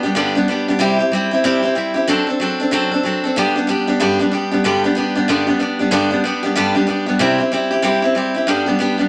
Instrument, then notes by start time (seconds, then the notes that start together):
steel-string acoustic guitar
0.03 G3 B3 D4 G4
0.15 G2 D3 G3 B3 D4 G4
0.35 G3 B3 D4 G4
0.48 G3 B3 D4 G4
0.68 G3 B3 D4 G4
0.79 C3 G3 C4 E4 G4
0.99 C4 E4 G4
1.11 G3 C4 E4 G4
1.31 C4 E4 G4
1.44 C3 G3 C4 E4 G4
1.62 C4 E4 G4
1.75 G3 C4 E4 G4
1.94 C4 E4 G4
2.08 D3 F#3 C4 D4 A4
2.27 C4 D4 A4
2.40 F#3 C4 D4 A4
2.60 C4 D4 A4
2.71 D3 F#3 C4 D4 A4
2.91 C4 D4 A4
3.03 F#3 C4 D4 A4
3.24 C4 D4 A4
3.36 G2 D3 G3 B3 D4 G4
3.56 G3 B3 D4 G4
3.67 G3 B3 D4 G4
3.87 G3 B3 D4 G4
4.00 G2 D3 G3 B3 D4 G4
4.19 G3 B3 D4 G4
4.31 G3 B3 D4 G4
4.51 G3 B3 D4 G4
4.64 G2 D3 G3 B3 D4 G4
4.84 G3 B3 D4 G4
4.95 G3 B3 D4 G4
5.15 G3 B3 D4 G4
5.28 G2 D3 G3 B3 D4 G4
5.47 G3 B3 D4 G4
5.59 G3 B3 D4 G4
5.79 G3 B3 D4 G4
5.91 G2 D3 G3 B3 D4 G4
6.11 G3 B3 D4 G4
6.24 G3 B3 D4 G4
6.43 G3 B3 D4 G4
6.56 G2 D3 G3 B3 D4 G4
6.75 G3 B3 D4 G4
6.87 G3 B3 D4 G4
7.06 G3 B3 D4 G4
7.19 C3 G3 C4 E4 G4
7.38 C4 E4 G4
7.52 G3 C4 E4 G4
7.71 C4 E4 G4
7.82 C3 G3 C4 E4 G4
8.02 C4 E4 G4
8.15 G3 C4 E4 G4
8.34 C4 E4 G4
8.47 G2 D3 G3 B3 D4 G4
8.66 G3 B3 D4 G4
8.79 G3 B3 D4 G4
8.98 G3 B3 D4 G4